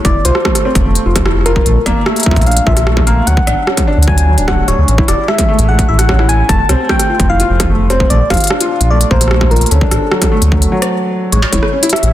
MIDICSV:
0, 0, Header, 1, 6, 480
1, 0, Start_track
1, 0, Tempo, 402685
1, 58, Time_signature, 4, 2, 24, 8
1, 14459, End_track
2, 0, Start_track
2, 0, Title_t, "Soft synth lead"
2, 0, Program_c, 0, 80
2, 59, Note_on_c, 0, 74, 101
2, 299, Note_on_c, 0, 72, 89
2, 317, Note_off_c, 0, 74, 0
2, 779, Note_off_c, 0, 72, 0
2, 1738, Note_on_c, 0, 70, 91
2, 2218, Note_on_c, 0, 74, 86
2, 2235, Note_off_c, 0, 70, 0
2, 2458, Note_on_c, 0, 76, 92
2, 2475, Note_off_c, 0, 74, 0
2, 2932, Note_off_c, 0, 76, 0
2, 2939, Note_on_c, 0, 77, 97
2, 3178, Note_on_c, 0, 76, 99
2, 3196, Note_off_c, 0, 77, 0
2, 3658, Note_on_c, 0, 77, 92
2, 3676, Note_off_c, 0, 76, 0
2, 3898, Note_on_c, 0, 78, 103
2, 3916, Note_off_c, 0, 77, 0
2, 4618, Note_off_c, 0, 78, 0
2, 4858, Note_on_c, 0, 80, 103
2, 5338, Note_on_c, 0, 78, 104
2, 5356, Note_off_c, 0, 80, 0
2, 5577, Note_on_c, 0, 73, 101
2, 5595, Note_off_c, 0, 78, 0
2, 6059, Note_on_c, 0, 74, 101
2, 6077, Note_off_c, 0, 73, 0
2, 6297, Note_on_c, 0, 76, 104
2, 6315, Note_off_c, 0, 74, 0
2, 6770, Note_off_c, 0, 76, 0
2, 6777, Note_on_c, 0, 78, 105
2, 7001, Note_off_c, 0, 78, 0
2, 7016, Note_on_c, 0, 76, 98
2, 7135, Note_on_c, 0, 78, 107
2, 7153, Note_off_c, 0, 76, 0
2, 7494, Note_on_c, 0, 80, 105
2, 7512, Note_off_c, 0, 78, 0
2, 7734, Note_on_c, 0, 81, 117
2, 7752, Note_off_c, 0, 80, 0
2, 8216, Note_on_c, 0, 79, 108
2, 8234, Note_off_c, 0, 81, 0
2, 8690, Note_off_c, 0, 79, 0
2, 8697, Note_on_c, 0, 77, 110
2, 9144, Note_off_c, 0, 77, 0
2, 9416, Note_on_c, 0, 72, 94
2, 9656, Note_on_c, 0, 74, 102
2, 9674, Note_off_c, 0, 72, 0
2, 9896, Note_on_c, 0, 77, 108
2, 9914, Note_off_c, 0, 74, 0
2, 10615, Note_on_c, 0, 74, 100
2, 10633, Note_off_c, 0, 77, 0
2, 10848, Note_off_c, 0, 74, 0
2, 10855, Note_on_c, 0, 72, 99
2, 11334, Note_on_c, 0, 70, 89
2, 11352, Note_off_c, 0, 72, 0
2, 11576, Note_on_c, 0, 69, 92
2, 11594, Note_off_c, 0, 70, 0
2, 13017, Note_off_c, 0, 69, 0
2, 13497, Note_on_c, 0, 73, 91
2, 14218, Note_on_c, 0, 76, 99
2, 14236, Note_off_c, 0, 73, 0
2, 14459, Note_off_c, 0, 76, 0
2, 14459, End_track
3, 0, Start_track
3, 0, Title_t, "Felt piano"
3, 0, Program_c, 1, 0
3, 0, Control_c, 1, 64, 127
3, 58, Note_on_c, 1, 64, 83
3, 72, Control_c, 1, 64, 0
3, 160, Note_off_c, 1, 64, 0
3, 298, Note_on_c, 1, 65, 99
3, 302, Control_c, 1, 64, 127
3, 412, Note_off_c, 1, 65, 0
3, 538, Note_on_c, 1, 57, 80
3, 640, Note_off_c, 1, 57, 0
3, 777, Note_on_c, 1, 60, 96
3, 880, Note_off_c, 1, 60, 0
3, 1018, Note_on_c, 1, 57, 78
3, 1079, Note_off_c, 1, 57, 0
3, 1258, Note_on_c, 1, 65, 75
3, 1372, Note_off_c, 1, 65, 0
3, 1498, Note_on_c, 1, 64, 83
3, 1600, Note_off_c, 1, 64, 0
3, 1738, Note_on_c, 1, 65, 102
3, 1852, Note_off_c, 1, 65, 0
3, 1977, Note_on_c, 1, 57, 82
3, 1992, Control_c, 1, 64, 0
3, 2080, Note_off_c, 1, 57, 0
3, 2194, Control_c, 1, 64, 127
3, 2217, Note_on_c, 1, 58, 104
3, 2320, Note_off_c, 1, 58, 0
3, 2458, Note_on_c, 1, 57, 79
3, 2519, Note_off_c, 1, 57, 0
3, 2697, Note_on_c, 1, 65, 77
3, 2812, Note_off_c, 1, 65, 0
3, 2937, Note_on_c, 1, 62, 79
3, 3040, Note_off_c, 1, 62, 0
3, 3178, Note_on_c, 1, 65, 96
3, 3292, Note_off_c, 1, 65, 0
3, 3418, Note_on_c, 1, 57, 82
3, 3520, Note_off_c, 1, 57, 0
3, 3657, Note_on_c, 1, 58, 102
3, 3760, Note_off_c, 1, 58, 0
3, 3897, Note_on_c, 1, 54, 84
3, 3915, Control_c, 1, 64, 0
3, 3959, Note_off_c, 1, 54, 0
3, 4129, Control_c, 1, 64, 127
3, 4138, Note_on_c, 1, 62, 75
3, 4252, Note_off_c, 1, 62, 0
3, 4378, Note_on_c, 1, 61, 80
3, 4481, Note_off_c, 1, 61, 0
3, 4618, Note_on_c, 1, 62, 98
3, 4732, Note_off_c, 1, 62, 0
3, 4858, Note_on_c, 1, 54, 78
3, 4960, Note_off_c, 1, 54, 0
3, 5097, Note_on_c, 1, 54, 74
3, 5200, Note_off_c, 1, 54, 0
3, 5217, Note_on_c, 1, 62, 98
3, 5320, Note_off_c, 1, 62, 0
3, 5337, Note_on_c, 1, 57, 82
3, 5440, Note_off_c, 1, 57, 0
3, 5578, Note_on_c, 1, 62, 75
3, 5680, Note_off_c, 1, 62, 0
3, 5818, Note_on_c, 1, 61, 82
3, 5834, Control_c, 1, 64, 0
3, 5920, Note_off_c, 1, 61, 0
3, 5938, Note_on_c, 1, 64, 99
3, 6007, Control_c, 1, 64, 127
3, 6052, Note_off_c, 1, 64, 0
3, 6297, Note_on_c, 1, 56, 82
3, 6400, Note_off_c, 1, 56, 0
3, 6538, Note_on_c, 1, 57, 98
3, 6640, Note_off_c, 1, 57, 0
3, 6778, Note_on_c, 1, 56, 79
3, 6840, Note_off_c, 1, 56, 0
3, 7018, Note_on_c, 1, 64, 72
3, 7132, Note_off_c, 1, 64, 0
3, 7259, Note_on_c, 1, 61, 83
3, 7361, Note_off_c, 1, 61, 0
3, 7378, Note_on_c, 1, 64, 102
3, 7492, Note_off_c, 1, 64, 0
3, 7739, Note_on_c, 1, 57, 83
3, 7753, Control_c, 1, 64, 0
3, 7841, Note_off_c, 1, 57, 0
3, 7978, Note_on_c, 1, 60, 102
3, 7998, Control_c, 1, 64, 127
3, 8080, Note_off_c, 1, 60, 0
3, 8218, Note_on_c, 1, 57, 83
3, 8280, Note_off_c, 1, 57, 0
3, 8458, Note_on_c, 1, 65, 74
3, 8572, Note_off_c, 1, 65, 0
3, 8698, Note_on_c, 1, 64, 79
3, 8800, Note_off_c, 1, 64, 0
3, 8819, Note_on_c, 1, 65, 103
3, 8933, Note_off_c, 1, 65, 0
3, 9178, Note_on_c, 1, 57, 84
3, 9280, Note_off_c, 1, 57, 0
3, 9418, Note_on_c, 1, 60, 101
3, 9520, Note_off_c, 1, 60, 0
3, 9658, Note_on_c, 1, 57, 82
3, 9673, Control_c, 1, 64, 0
3, 9719, Note_off_c, 1, 57, 0
3, 9869, Control_c, 1, 64, 127
3, 9898, Note_on_c, 1, 65, 78
3, 10012, Note_off_c, 1, 65, 0
3, 10137, Note_on_c, 1, 62, 82
3, 10240, Note_off_c, 1, 62, 0
3, 10258, Note_on_c, 1, 65, 99
3, 10372, Note_off_c, 1, 65, 0
3, 10618, Note_on_c, 1, 57, 77
3, 10720, Note_off_c, 1, 57, 0
3, 10858, Note_on_c, 1, 58, 99
3, 10960, Note_off_c, 1, 58, 0
3, 11098, Note_on_c, 1, 57, 84
3, 11159, Note_off_c, 1, 57, 0
3, 11338, Note_on_c, 1, 65, 77
3, 11452, Note_off_c, 1, 65, 0
3, 11577, Note_on_c, 1, 61, 86
3, 11592, Control_c, 1, 64, 0
3, 11680, Note_off_c, 1, 61, 0
3, 11697, Note_on_c, 1, 62, 95
3, 11776, Control_c, 1, 64, 127
3, 11812, Note_off_c, 1, 62, 0
3, 12057, Note_on_c, 1, 54, 81
3, 12160, Note_off_c, 1, 54, 0
3, 12297, Note_on_c, 1, 57, 99
3, 12400, Note_off_c, 1, 57, 0
3, 12536, Note_on_c, 1, 54, 78
3, 12598, Note_off_c, 1, 54, 0
3, 12776, Note_on_c, 1, 54, 103
3, 12879, Note_off_c, 1, 54, 0
3, 13497, Note_on_c, 1, 56, 83
3, 13513, Control_c, 1, 64, 0
3, 13559, Note_off_c, 1, 56, 0
3, 13713, Control_c, 1, 64, 127
3, 13737, Note_on_c, 1, 64, 79
3, 13852, Note_off_c, 1, 64, 0
3, 13978, Note_on_c, 1, 61, 81
3, 14080, Note_off_c, 1, 61, 0
3, 14098, Note_on_c, 1, 64, 101
3, 14212, Note_off_c, 1, 64, 0
3, 14459, End_track
4, 0, Start_track
4, 0, Title_t, "Analog synth bass"
4, 0, Program_c, 2, 38
4, 58, Note_on_c, 2, 29, 101
4, 202, Note_off_c, 2, 29, 0
4, 298, Note_on_c, 2, 36, 82
4, 370, Note_off_c, 2, 36, 0
4, 898, Note_on_c, 2, 29, 94
4, 1181, Note_off_c, 2, 29, 0
4, 1257, Note_on_c, 2, 29, 100
4, 1901, Note_off_c, 2, 29, 0
4, 1978, Note_on_c, 2, 34, 105
4, 2122, Note_off_c, 2, 34, 0
4, 2218, Note_on_c, 2, 29, 81
4, 2290, Note_off_c, 2, 29, 0
4, 2818, Note_on_c, 2, 34, 94
4, 3101, Note_off_c, 2, 34, 0
4, 3178, Note_on_c, 2, 34, 101
4, 3822, Note_off_c, 2, 34, 0
4, 3898, Note_on_c, 2, 38, 104
4, 4043, Note_off_c, 2, 38, 0
4, 4139, Note_on_c, 2, 33, 81
4, 4210, Note_off_c, 2, 33, 0
4, 4738, Note_on_c, 2, 38, 95
4, 5218, Note_on_c, 2, 26, 92
4, 5236, Note_off_c, 2, 38, 0
4, 5502, Note_off_c, 2, 26, 0
4, 5579, Note_on_c, 2, 26, 101
4, 5651, Note_off_c, 2, 26, 0
4, 5698, Note_on_c, 2, 38, 92
4, 5770, Note_off_c, 2, 38, 0
4, 5818, Note_on_c, 2, 33, 101
4, 5962, Note_off_c, 2, 33, 0
4, 6059, Note_on_c, 2, 28, 80
4, 6131, Note_off_c, 2, 28, 0
4, 6659, Note_on_c, 2, 33, 93
4, 6942, Note_off_c, 2, 33, 0
4, 7018, Note_on_c, 2, 33, 100
4, 7661, Note_off_c, 2, 33, 0
4, 7738, Note_on_c, 2, 29, 102
4, 7882, Note_off_c, 2, 29, 0
4, 7978, Note_on_c, 2, 36, 83
4, 8050, Note_off_c, 2, 36, 0
4, 8578, Note_on_c, 2, 29, 94
4, 8861, Note_off_c, 2, 29, 0
4, 8937, Note_on_c, 2, 29, 102
4, 9581, Note_off_c, 2, 29, 0
4, 9657, Note_on_c, 2, 34, 103
4, 9802, Note_off_c, 2, 34, 0
4, 9897, Note_on_c, 2, 29, 83
4, 9970, Note_off_c, 2, 29, 0
4, 10497, Note_on_c, 2, 34, 96
4, 10781, Note_off_c, 2, 34, 0
4, 10858, Note_on_c, 2, 34, 101
4, 11501, Note_off_c, 2, 34, 0
4, 11577, Note_on_c, 2, 38, 103
4, 11722, Note_off_c, 2, 38, 0
4, 11818, Note_on_c, 2, 33, 81
4, 11890, Note_off_c, 2, 33, 0
4, 12418, Note_on_c, 2, 38, 96
4, 12701, Note_off_c, 2, 38, 0
4, 13498, Note_on_c, 2, 33, 102
4, 13643, Note_off_c, 2, 33, 0
4, 13738, Note_on_c, 2, 28, 81
4, 13810, Note_off_c, 2, 28, 0
4, 14338, Note_on_c, 2, 33, 99
4, 14459, Note_off_c, 2, 33, 0
4, 14459, End_track
5, 0, Start_track
5, 0, Title_t, "Struck metal"
5, 13618, Note_on_c, 9, 56, 92
5, 13737, Note_off_c, 9, 56, 0
5, 14459, End_track
6, 0, Start_track
6, 0, Title_t, "Drums"
6, 57, Note_on_c, 9, 42, 56
6, 58, Note_on_c, 9, 36, 126
6, 177, Note_off_c, 9, 36, 0
6, 177, Note_off_c, 9, 42, 0
6, 297, Note_on_c, 9, 42, 79
6, 416, Note_off_c, 9, 42, 0
6, 417, Note_on_c, 9, 37, 80
6, 537, Note_off_c, 9, 37, 0
6, 537, Note_on_c, 9, 37, 121
6, 538, Note_on_c, 9, 36, 107
6, 656, Note_off_c, 9, 37, 0
6, 657, Note_off_c, 9, 36, 0
6, 658, Note_on_c, 9, 37, 62
6, 658, Note_on_c, 9, 42, 95
6, 777, Note_off_c, 9, 37, 0
6, 777, Note_off_c, 9, 42, 0
6, 898, Note_on_c, 9, 36, 109
6, 898, Note_on_c, 9, 42, 54
6, 1017, Note_off_c, 9, 36, 0
6, 1017, Note_off_c, 9, 42, 0
6, 1137, Note_on_c, 9, 42, 83
6, 1256, Note_off_c, 9, 42, 0
6, 1377, Note_on_c, 9, 37, 80
6, 1377, Note_on_c, 9, 42, 95
6, 1378, Note_on_c, 9, 36, 124
6, 1497, Note_off_c, 9, 36, 0
6, 1497, Note_off_c, 9, 37, 0
6, 1497, Note_off_c, 9, 42, 0
6, 1497, Note_on_c, 9, 37, 121
6, 1616, Note_off_c, 9, 37, 0
6, 1738, Note_on_c, 9, 37, 51
6, 1738, Note_on_c, 9, 42, 52
6, 1857, Note_off_c, 9, 37, 0
6, 1857, Note_off_c, 9, 42, 0
6, 1858, Note_on_c, 9, 36, 109
6, 1977, Note_off_c, 9, 36, 0
6, 1977, Note_on_c, 9, 42, 54
6, 2097, Note_off_c, 9, 42, 0
6, 2218, Note_on_c, 9, 36, 111
6, 2218, Note_on_c, 9, 37, 74
6, 2218, Note_on_c, 9, 42, 75
6, 2337, Note_off_c, 9, 36, 0
6, 2337, Note_off_c, 9, 37, 0
6, 2337, Note_off_c, 9, 42, 0
6, 2458, Note_on_c, 9, 37, 120
6, 2577, Note_off_c, 9, 37, 0
6, 2578, Note_on_c, 9, 42, 42
6, 2619, Note_off_c, 9, 42, 0
6, 2619, Note_on_c, 9, 42, 59
6, 2658, Note_off_c, 9, 42, 0
6, 2658, Note_on_c, 9, 42, 72
6, 2698, Note_on_c, 9, 36, 118
6, 2758, Note_off_c, 9, 36, 0
6, 2758, Note_on_c, 9, 36, 99
6, 2777, Note_off_c, 9, 42, 0
6, 2818, Note_off_c, 9, 36, 0
6, 2818, Note_on_c, 9, 36, 75
6, 2818, Note_on_c, 9, 42, 24
6, 2878, Note_off_c, 9, 36, 0
6, 2878, Note_off_c, 9, 42, 0
6, 2878, Note_on_c, 9, 36, 63
6, 2878, Note_on_c, 9, 42, 31
6, 2938, Note_off_c, 9, 42, 0
6, 2938, Note_on_c, 9, 42, 36
6, 2997, Note_off_c, 9, 36, 0
6, 2998, Note_off_c, 9, 42, 0
6, 2998, Note_on_c, 9, 42, 43
6, 3058, Note_off_c, 9, 42, 0
6, 3058, Note_on_c, 9, 42, 82
6, 3177, Note_off_c, 9, 42, 0
6, 3178, Note_on_c, 9, 36, 108
6, 3297, Note_off_c, 9, 36, 0
6, 3298, Note_on_c, 9, 37, 76
6, 3298, Note_on_c, 9, 42, 91
6, 3417, Note_off_c, 9, 37, 0
6, 3417, Note_off_c, 9, 42, 0
6, 3418, Note_on_c, 9, 37, 124
6, 3537, Note_off_c, 9, 37, 0
6, 3538, Note_on_c, 9, 36, 112
6, 3538, Note_on_c, 9, 37, 75
6, 3657, Note_off_c, 9, 36, 0
6, 3657, Note_off_c, 9, 37, 0
6, 3658, Note_on_c, 9, 42, 51
6, 3778, Note_off_c, 9, 42, 0
6, 3898, Note_on_c, 9, 42, 51
6, 4018, Note_off_c, 9, 42, 0
6, 4018, Note_on_c, 9, 36, 121
6, 4137, Note_off_c, 9, 36, 0
6, 4139, Note_on_c, 9, 37, 73
6, 4139, Note_on_c, 9, 42, 74
6, 4258, Note_off_c, 9, 37, 0
6, 4258, Note_off_c, 9, 42, 0
6, 4378, Note_on_c, 9, 37, 123
6, 4497, Note_off_c, 9, 37, 0
6, 4498, Note_on_c, 9, 36, 106
6, 4498, Note_on_c, 9, 37, 57
6, 4498, Note_on_c, 9, 42, 91
6, 4617, Note_off_c, 9, 37, 0
6, 4617, Note_off_c, 9, 42, 0
6, 4618, Note_off_c, 9, 36, 0
6, 4798, Note_on_c, 9, 42, 54
6, 4858, Note_on_c, 9, 36, 111
6, 4917, Note_off_c, 9, 42, 0
6, 4978, Note_off_c, 9, 36, 0
6, 4979, Note_on_c, 9, 42, 77
6, 5098, Note_off_c, 9, 42, 0
6, 5218, Note_on_c, 9, 42, 90
6, 5337, Note_off_c, 9, 42, 0
6, 5338, Note_on_c, 9, 37, 124
6, 5339, Note_on_c, 9, 36, 118
6, 5457, Note_off_c, 9, 37, 0
6, 5458, Note_off_c, 9, 36, 0
6, 5578, Note_on_c, 9, 37, 48
6, 5578, Note_on_c, 9, 42, 49
6, 5697, Note_off_c, 9, 37, 0
6, 5697, Note_off_c, 9, 42, 0
6, 5818, Note_on_c, 9, 42, 51
6, 5937, Note_off_c, 9, 42, 0
6, 5939, Note_on_c, 9, 36, 105
6, 6058, Note_off_c, 9, 36, 0
6, 6058, Note_on_c, 9, 37, 71
6, 6058, Note_on_c, 9, 42, 74
6, 6177, Note_off_c, 9, 37, 0
6, 6177, Note_off_c, 9, 42, 0
6, 6298, Note_on_c, 9, 37, 118
6, 6417, Note_off_c, 9, 37, 0
6, 6418, Note_on_c, 9, 42, 89
6, 6419, Note_on_c, 9, 36, 116
6, 6538, Note_off_c, 9, 36, 0
6, 6538, Note_off_c, 9, 42, 0
6, 6659, Note_on_c, 9, 42, 52
6, 6778, Note_off_c, 9, 42, 0
6, 6898, Note_on_c, 9, 36, 104
6, 6899, Note_on_c, 9, 42, 74
6, 7018, Note_off_c, 9, 36, 0
6, 7018, Note_off_c, 9, 42, 0
6, 7139, Note_on_c, 9, 37, 73
6, 7139, Note_on_c, 9, 42, 86
6, 7258, Note_off_c, 9, 37, 0
6, 7258, Note_off_c, 9, 42, 0
6, 7258, Note_on_c, 9, 36, 103
6, 7258, Note_on_c, 9, 37, 114
6, 7378, Note_off_c, 9, 36, 0
6, 7378, Note_off_c, 9, 37, 0
6, 7379, Note_on_c, 9, 37, 76
6, 7498, Note_off_c, 9, 37, 0
6, 7498, Note_on_c, 9, 42, 48
6, 7618, Note_off_c, 9, 42, 0
6, 7738, Note_on_c, 9, 36, 116
6, 7739, Note_on_c, 9, 42, 51
6, 7857, Note_off_c, 9, 36, 0
6, 7858, Note_off_c, 9, 42, 0
6, 7978, Note_on_c, 9, 37, 75
6, 7978, Note_on_c, 9, 42, 72
6, 8097, Note_off_c, 9, 37, 0
6, 8097, Note_off_c, 9, 42, 0
6, 8217, Note_on_c, 9, 37, 112
6, 8218, Note_on_c, 9, 36, 100
6, 8336, Note_off_c, 9, 37, 0
6, 8337, Note_off_c, 9, 36, 0
6, 8338, Note_on_c, 9, 37, 60
6, 8338, Note_on_c, 9, 42, 86
6, 8457, Note_off_c, 9, 37, 0
6, 8457, Note_off_c, 9, 42, 0
6, 8578, Note_on_c, 9, 36, 99
6, 8578, Note_on_c, 9, 42, 53
6, 8697, Note_off_c, 9, 36, 0
6, 8697, Note_off_c, 9, 42, 0
6, 8818, Note_on_c, 9, 42, 74
6, 8937, Note_off_c, 9, 42, 0
6, 9057, Note_on_c, 9, 37, 77
6, 9057, Note_on_c, 9, 42, 89
6, 9058, Note_on_c, 9, 36, 121
6, 9176, Note_off_c, 9, 37, 0
6, 9176, Note_off_c, 9, 42, 0
6, 9177, Note_off_c, 9, 36, 0
6, 9417, Note_on_c, 9, 37, 49
6, 9417, Note_on_c, 9, 42, 48
6, 9536, Note_off_c, 9, 37, 0
6, 9536, Note_off_c, 9, 42, 0
6, 9538, Note_on_c, 9, 36, 98
6, 9657, Note_off_c, 9, 36, 0
6, 9658, Note_on_c, 9, 42, 51
6, 9777, Note_off_c, 9, 42, 0
6, 9898, Note_on_c, 9, 36, 99
6, 9898, Note_on_c, 9, 37, 78
6, 9898, Note_on_c, 9, 42, 33
6, 9937, Note_off_c, 9, 42, 0
6, 9937, Note_on_c, 9, 42, 39
6, 9978, Note_off_c, 9, 42, 0
6, 9978, Note_on_c, 9, 42, 45
6, 10017, Note_off_c, 9, 36, 0
6, 10017, Note_off_c, 9, 37, 0
6, 10018, Note_off_c, 9, 42, 0
6, 10018, Note_on_c, 9, 42, 53
6, 10058, Note_off_c, 9, 42, 0
6, 10058, Note_on_c, 9, 42, 63
6, 10098, Note_off_c, 9, 42, 0
6, 10098, Note_on_c, 9, 42, 67
6, 10138, Note_on_c, 9, 37, 110
6, 10217, Note_off_c, 9, 42, 0
6, 10257, Note_off_c, 9, 37, 0
6, 10257, Note_on_c, 9, 42, 92
6, 10377, Note_off_c, 9, 42, 0
6, 10497, Note_on_c, 9, 42, 52
6, 10617, Note_off_c, 9, 42, 0
6, 10737, Note_on_c, 9, 42, 78
6, 10856, Note_off_c, 9, 42, 0
6, 10857, Note_on_c, 9, 36, 97
6, 10977, Note_off_c, 9, 36, 0
6, 10977, Note_on_c, 9, 37, 37
6, 10977, Note_on_c, 9, 42, 91
6, 11057, Note_off_c, 9, 37, 0
6, 11057, Note_on_c, 9, 37, 50
6, 11096, Note_off_c, 9, 42, 0
6, 11097, Note_off_c, 9, 37, 0
6, 11097, Note_on_c, 9, 37, 116
6, 11137, Note_off_c, 9, 37, 0
6, 11137, Note_on_c, 9, 37, 66
6, 11217, Note_off_c, 9, 37, 0
6, 11217, Note_on_c, 9, 36, 102
6, 11217, Note_on_c, 9, 37, 82
6, 11337, Note_off_c, 9, 36, 0
6, 11337, Note_off_c, 9, 37, 0
6, 11338, Note_on_c, 9, 42, 22
6, 11398, Note_off_c, 9, 42, 0
6, 11398, Note_on_c, 9, 42, 29
6, 11458, Note_off_c, 9, 42, 0
6, 11458, Note_on_c, 9, 42, 36
6, 11518, Note_off_c, 9, 42, 0
6, 11518, Note_on_c, 9, 42, 43
6, 11578, Note_off_c, 9, 42, 0
6, 11578, Note_on_c, 9, 42, 53
6, 11697, Note_off_c, 9, 42, 0
6, 11697, Note_on_c, 9, 36, 116
6, 11817, Note_off_c, 9, 36, 0
6, 11817, Note_on_c, 9, 37, 78
6, 11817, Note_on_c, 9, 42, 74
6, 11937, Note_off_c, 9, 37, 0
6, 11937, Note_off_c, 9, 42, 0
6, 12058, Note_on_c, 9, 37, 114
6, 12177, Note_off_c, 9, 37, 0
6, 12178, Note_on_c, 9, 36, 96
6, 12178, Note_on_c, 9, 37, 65
6, 12178, Note_on_c, 9, 42, 92
6, 12297, Note_off_c, 9, 36, 0
6, 12297, Note_off_c, 9, 37, 0
6, 12297, Note_off_c, 9, 42, 0
6, 12418, Note_on_c, 9, 42, 54
6, 12537, Note_off_c, 9, 42, 0
6, 12538, Note_on_c, 9, 36, 103
6, 12657, Note_off_c, 9, 36, 0
6, 12658, Note_on_c, 9, 42, 81
6, 12777, Note_off_c, 9, 42, 0
6, 12898, Note_on_c, 9, 37, 85
6, 12898, Note_on_c, 9, 42, 94
6, 13017, Note_off_c, 9, 37, 0
6, 13017, Note_off_c, 9, 42, 0
6, 13499, Note_on_c, 9, 42, 55
6, 13618, Note_off_c, 9, 42, 0
6, 13738, Note_on_c, 9, 36, 83
6, 13738, Note_on_c, 9, 42, 79
6, 13857, Note_off_c, 9, 36, 0
6, 13857, Note_off_c, 9, 42, 0
6, 13859, Note_on_c, 9, 37, 57
6, 13978, Note_off_c, 9, 37, 0
6, 14098, Note_on_c, 9, 42, 92
6, 14178, Note_off_c, 9, 42, 0
6, 14178, Note_on_c, 9, 42, 75
6, 14218, Note_on_c, 9, 37, 118
6, 14258, Note_off_c, 9, 42, 0
6, 14258, Note_on_c, 9, 42, 62
6, 14337, Note_off_c, 9, 37, 0
6, 14339, Note_off_c, 9, 42, 0
6, 14339, Note_on_c, 9, 42, 58
6, 14458, Note_off_c, 9, 42, 0
6, 14459, End_track
0, 0, End_of_file